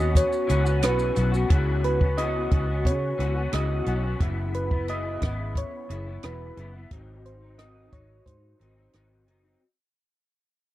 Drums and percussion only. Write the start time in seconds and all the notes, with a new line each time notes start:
0.15 kick, closed hi-hat, shaker
0.33 shaker
0.50 closed hi-hat, shaker
0.66 shaker
0.83 cross-stick, closed hi-hat, shaker
0.99 shaker
1.16 closed hi-hat, shaker
1.34 shaker
1.50 kick, closed hi-hat
1.84 closed hi-hat
2.01 kick
2.18 closed hi-hat
2.51 kick, closed hi-hat
2.85 kick, closed hi-hat
3.20 closed hi-hat
3.53 cross-stick, closed hi-hat
3.86 closed hi-hat
4.20 kick, closed hi-hat
4.54 closed hi-hat
4.71 kick
4.88 closed hi-hat
5.22 kick, cross-stick, closed hi-hat
5.55 kick, closed hi-hat
5.90 closed hi-hat
6.23 cross-stick, closed hi-hat
6.57 closed hi-hat
6.91 kick, closed hi-hat
7.26 closed hi-hat
7.59 cross-stick, closed hi-hat
7.93 kick, closed hi-hat
8.26 kick, closed hi-hat
8.61 closed hi-hat
8.93 cross-stick, closed hi-hat
9.28 closed hi-hat